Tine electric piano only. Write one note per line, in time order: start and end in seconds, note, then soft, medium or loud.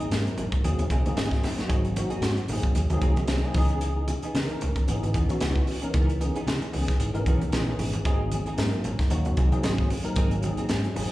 0.12 0.59 F#3 medium
0.12 0.59 A#3 medium
0.12 0.59 C4 medium
0.12 0.59 D#4 medium
0.12 0.60 A#4 medium
0.63 1.00 F#3 medium
0.63 1.00 A#3 medium
0.63 1.00 C4 medium
0.63 1.01 D#4 medium
0.63 1.00 G#4 medium
1.05 1.51 F#3 medium
1.05 1.51 A#3 medium
1.05 1.51 C4 medium
1.05 1.52 D#4 medium
1.05 1.52 G#4 medium
1.58 1.92 F#3 medium
1.58 1.93 A#3 medium
1.58 1.93 C4 medium
1.58 1.93 D#4 medium
1.58 1.93 F#4 medium
1.96 2.43 F#3 medium
1.96 2.44 A#3 medium
1.96 2.44 C4 medium
1.96 2.44 D#4 medium
1.96 2.44 F#4 medium
2.50 2.85 F#3 medium
2.50 2.86 A#3 medium
2.50 2.86 C4 medium
2.50 2.86 D#4 medium
2.50 2.87 G#4 medium
2.91 3.37 F#3 medium
2.91 3.37 A#3 medium
2.91 3.37 C4 medium
2.91 3.37 D#4 medium
2.91 3.38 G#4 loud
3.44 3.56 F#3 medium
3.44 3.56 A#3 medium
3.44 3.56 C4 medium
3.44 3.55 D#4 medium
3.44 3.56 G#4 medium
3.56 4.26 E3 medium
3.56 4.26 B3 medium
3.56 4.26 C#4 medium
3.56 4.27 D#4 medium
3.56 4.27 G#4 medium
4.35 4.82 E3 medium
4.35 4.82 B3 medium
4.35 4.82 C#4 medium
4.35 4.82 D#4 medium
4.35 4.83 A#4 medium
4.87 5.23 E3 medium
4.87 5.23 B3 medium
4.87 5.23 C#4 medium
4.87 5.24 D#4 medium
4.87 5.24 G#4 medium
5.29 5.74 E3 medium
5.29 5.75 B3 medium
5.29 5.75 C#4 medium
5.29 5.75 D#4 medium
5.29 5.75 F#4 medium
5.81 6.16 E3 medium
5.81 6.16 B3 medium
5.81 6.16 C#4 medium
5.81 6.16 D#4 medium
5.81 6.17 A#4 medium
6.19 6.67 E3 medium
6.19 6.67 B3 medium
6.19 6.67 C#4 medium
6.19 6.68 D#4 medium
6.19 6.68 G#4 medium
6.72 7.08 E3 medium
6.72 7.08 B3 medium
6.72 7.08 C#4 medium
6.72 7.09 D#4 medium
6.72 7.09 G#4 medium
7.13 7.59 E3 medium
7.13 7.59 B3 medium
7.13 7.60 C#4 medium
7.13 7.60 D#4 medium
7.13 7.60 A#4 medium
7.66 8.00 E3 medium
7.66 8.00 B3 medium
7.66 8.01 C#4 medium
7.66 8.01 D#4 medium
7.66 8.01 G#4 medium
8.03 8.51 F#3 medium
8.03 8.52 A#3 medium
8.03 8.52 C4 medium
8.03 8.52 D#4 medium
8.03 8.52 G#4 medium
8.56 9.04 F#3 medium
8.56 9.04 A#3 medium
8.56 9.05 C4 medium
8.56 9.05 D#4 medium
8.56 9.05 A#4 medium
9.09 9.46 F#3 medium
9.09 9.46 A#3 medium
9.09 9.46 C4 medium
9.09 9.46 D#4 medium
9.09 9.46 F#4 medium
9.51 9.97 F#3 medium
9.51 9.97 A#3 medium
9.51 9.98 C4 medium
9.51 9.98 D#4 medium
9.51 9.98 G#4 medium
10.03 10.38 F#3 medium
10.03 10.38 A#3 medium
10.03 10.39 C4 medium
10.03 10.38 D#4 medium
10.03 10.39 A#4 medium
10.41 10.89 F#3 medium
10.41 10.89 A#3 medium
10.41 10.90 C4 medium
10.41 10.90 D#4 medium
10.41 10.90 G#4 medium
10.94 11.12 F#3 medium
10.94 11.12 A#3 medium
10.94 11.12 C4 medium
10.94 11.12 D#4 medium
10.94 11.12 G#4 medium